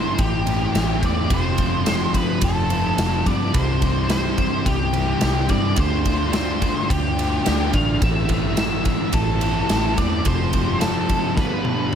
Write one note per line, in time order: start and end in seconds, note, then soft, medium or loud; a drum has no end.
0.00 0.44 A2 medium
0.00 1.00 A2 medium
0.00 0.47 E3 medium
0.00 1.02 E3 medium
0.00 0.45 A3 medium
0.00 0.99 A3 medium
0.00 0.46 C4 medium
0.00 0.45 E4 loud
0.00 0.21 C5 medium
0.18 0.67 A1 medium
0.18 1.05 G4 medium
0.18 kick loud
0.18 ride medium
0.46 0.73 A2 medium
0.46 0.73 E3 medium
0.46 0.73 A3 medium
0.46 0.74 C4 medium
0.46 0.75 E4 medium
0.46 ride medium
0.74 0.99 A1 medium
0.74 1.28 A2 medium
0.74 1.29 E3 medium
0.74 1.29 A3 medium
0.74 1.30 C4 medium
0.74 1.31 E4 medium
0.74 snare loud
0.74 ride medium
1.01 1.27 E2 medium
1.01 1.32 E3 medium
1.01 1.28 A3 medium
1.01 kick medium
1.01 ride medium
1.05 1.30 A2 medium
1.05 1.33 D5 medium
1.29 2.26 F1 medium
1.29 3.24 F2 medium
1.29 3.25 C3 medium
1.29 2.68 F3 medium
1.29 2.68 A3 medium
1.29 2.70 C4 medium
1.29 2.68 F4 loud
1.29 kick loud
1.29 ride medium
1.33 3.23 F3 medium
1.33 2.16 C5 medium
1.58 kick medium
1.58 ride medium
1.86 snare loud
1.86 ride loud
2.14 2.44 B4 medium
2.14 kick medium
2.14 ride medium
2.41 2.90 F1 medium
2.41 3.30 A4 medium
2.41 kick loud
2.41 ride loud
2.69 2.97 F3 medium
2.69 2.97 A3 medium
2.69 2.99 C4 medium
2.69 2.96 F4 medium
2.69 ride medium
2.98 3.22 F1 medium
2.98 3.52 F3 medium
2.98 3.53 A3 medium
2.98 3.54 C4 medium
2.98 3.53 F4 medium
2.98 snare loud
2.98 ride medium
3.24 3.51 G2 medium
3.24 3.51 C3 medium
3.24 3.52 F3 medium
3.24 3.55 D5 medium
3.24 kick medium
3.24 ride medium
3.28 3.54 F2 medium
3.52 4.50 C2 medium
3.52 4.92 C3 medium
3.52 5.48 C3 medium
3.52 4.92 E3 medium
3.52 4.92 G3 medium
3.52 5.49 G3 medium
3.52 4.93 C4 medium
3.52 4.92 E4 medium
3.52 4.09 C5 medium
3.52 kick loud
3.52 ride medium
3.57 5.48 C4 medium
3.82 kick medium
3.82 ride medium
4.09 4.68 C5 medium
4.09 snare loud
4.09 ride medium
4.38 kick medium
4.38 ride medium
4.66 5.15 C2 medium
4.66 5.53 G4 medium
4.66 kick loud
4.66 ride medium
4.93 5.18 C3 medium
4.93 5.19 E3 medium
4.93 5.20 G3 medium
4.93 5.21 C4 medium
4.93 5.20 E4 medium
4.93 ride medium
5.20 5.46 C2 medium
5.20 5.75 C3 medium
5.20 5.76 E3 medium
5.20 5.76 G3 medium
5.20 5.78 C4 medium
5.20 5.77 E4 medium
5.20 snare loud
5.20 ride medium
5.48 5.74 G2 medium
5.48 5.77 G3 medium
5.48 5.78 C4 medium
5.48 5.79 D5 medium
5.48 kick medium
5.48 ride medium
5.52 5.75 C3 medium
5.75 6.74 D2 medium
5.75 7.71 D3 medium
5.75 7.16 D3 medium
5.75 7.74 A3 medium
5.75 7.18 A3 medium
5.75 7.15 D4 medium
5.75 7.71 D4 loud
5.75 kick loud
5.75 ride medium
5.79 7.15 F4 medium
5.79 6.32 C5 loud
6.05 kick medium
6.05 ride medium
6.33 6.92 C5 loud
6.33 snare loud
6.33 ride loud
6.62 kick medium
6.62 ride medium
6.90 7.38 D2 medium
6.90 7.77 G4 medium
6.90 kick loud
6.90 ride medium
7.16 7.43 D3 medium
7.16 7.44 A3 medium
7.16 7.44 D4 medium
7.16 7.44 F4 medium
7.16 ride medium
7.44 7.71 D2 loud
7.44 7.99 D3 medium
7.44 8.01 A3 medium
7.44 8.00 D4 medium
7.44 8.01 F4 medium
7.44 snare loud
7.44 ride medium
7.72 7.98 A1 medium
7.72 8.02 A3 medium
7.72 8.00 D4 medium
7.72 8.02 F5 loud
7.72 kick medium
7.72 ride medium
7.77 8.01 D3 medium
8.00 8.97 A1 medium
8.00 9.39 A2 medium
8.00 9.96 A2 medium
8.00 9.39 E3 medium
8.00 9.97 E3 medium
8.00 9.40 A3 medium
8.00 9.40 C4 medium
8.00 9.39 E4 loud
8.00 8.57 E5 loud
8.00 kick loud
8.00 ride medium
8.04 9.96 A3 loud
8.29 kick medium
8.29 ride medium
8.57 9.16 E5 loud
8.57 snare loud
8.57 ride medium
8.85 kick medium
8.85 ride medium
9.13 9.61 A1 medium
9.13 10.01 A4 medium
9.13 kick loud
9.13 ride medium
9.40 9.68 A2 medium
9.40 9.69 E3 medium
9.40 9.68 A3 medium
9.40 9.68 C4 medium
9.40 9.68 E4 medium
9.40 ride medium
9.69 9.94 A1 loud
9.69 10.24 A2 medium
9.69 10.24 E3 medium
9.69 10.25 A3 medium
9.69 10.25 C4 medium
9.69 10.25 E4 medium
9.69 snare loud
9.69 ride medium
9.97 10.22 E2 medium
9.97 10.25 E3 medium
9.97 10.24 A3 medium
9.97 10.27 D5 loud
9.97 kick medium
9.97 ride medium
10.01 10.26 A2 medium
10.24 11.38 F1 medium
10.24 11.36 F2 medium
10.24 11.37 C3 medium
10.24 11.35 F3 medium
10.24 11.36 A3 medium
10.24 11.37 C4 medium
10.24 11.37 F4 medium
10.24 10.81 C5 medium
10.24 kick loud
10.24 ride medium
10.30 11.38 F3 loud
10.53 kick medium
10.53 ride medium
10.81 11.33 A4 medium
10.81 snare loud
10.81 ride medium
11.09 kick medium
11.09 ride medium
11.37 11.85 G1 medium
11.37 11.95 G2 medium
11.37 11.95 D3 medium
11.37 11.95 F3 loud
11.37 11.95 G3 loud
11.37 11.95 B3 loud
11.37 11.95 F4 medium
11.37 11.95 B4 medium
11.37 kick loud
11.37 snare medium
11.65 high tom medium